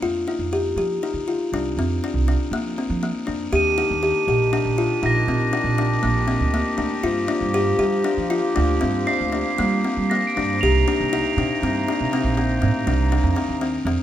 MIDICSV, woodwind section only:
0, 0, Header, 1, 2, 480
1, 0, Start_track
1, 0, Tempo, 499584
1, 31, Time_signature, 7, 2, 24, 8
1, 5311, Tempo, 509338
1, 10111, Tempo, 497925
1, 13395, End_track
2, 0, Start_track
2, 0, Title_t, "Woodwind section"
2, 0, Program_c, 0, 71
2, 3386, Note_on_c, 0, 67, 69
2, 3390, Note_on_c, 0, 62, 57
2, 3391, Note_on_c, 0, 51, 59
2, 6701, Note_off_c, 0, 51, 0
2, 6701, Note_off_c, 0, 62, 0
2, 6740, Note_on_c, 0, 53, 71
2, 6744, Note_on_c, 0, 58, 58
2, 10069, Note_off_c, 0, 67, 0
2, 10078, Note_off_c, 0, 53, 0
2, 10080, Note_off_c, 0, 58, 0
2, 10104, Note_on_c, 0, 58, 63
2, 10113, Note_on_c, 0, 48, 65
2, 10113, Note_on_c, 0, 63, 69
2, 13323, Note_off_c, 0, 48, 0
2, 13323, Note_off_c, 0, 58, 0
2, 13323, Note_off_c, 0, 63, 0
2, 13395, End_track
0, 0, End_of_file